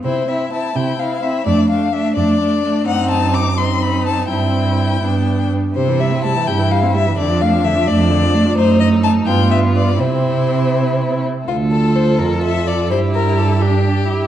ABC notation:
X:1
M:6/8
L:1/16
Q:3/8=84
K:C
V:1 name="Violin"
c2 e2 a2 g2 f2 e2 | d2 f2 e2 d6 | ^f2 a2 d'2 c'2 b2 a2 | g8- g2 z2 |
c2 e2 a2 g2 f2 e2 | d2 f2 e2 d6 | c2 ^d2 a2 g2 e2 =d2 | c8- c2 z2 |
[K:Dm] F2 A2 c2 B2 e2 d2 | c2 B2 A2 G6 |]
V:2 name="Violin"
E2 E2 E2 E2 E2 E2 | D2 D2 D2 D2 D2 D2 | ^D6 D6 | E6 D4 z2 |
E12 | D12 | ^D6 F6 | E8- E2 z2 |
[K:Dm] A12 | G6 G6 |]
V:3 name="Viola"
C2 C2 C2 C2 C2 C2 | A,2 A,2 A,2 A,2 A,2 A,2 | C6 C6 | C6 B,4 z2 |
C, E, G, C G, E, C, E, G, C G, E, | D, F, A, F, D, F, A, F, D, F, A, F, | A,6 B,6 | C8- C2 z2 |
[K:Dm] F12 | E6 D2 D2 E2 |]
V:4 name="Cello" clef=bass
C,6 C,6 | F,,6 F,,6 | ^F,,12 | G,,6 G,,4 z2 |
C,6 G,,6 | F,,6 F,,6 | ^F,,6 G,,6 | C,8- C,2 z2 |
[K:Dm] D,,6 F,,6 | G,,12 |]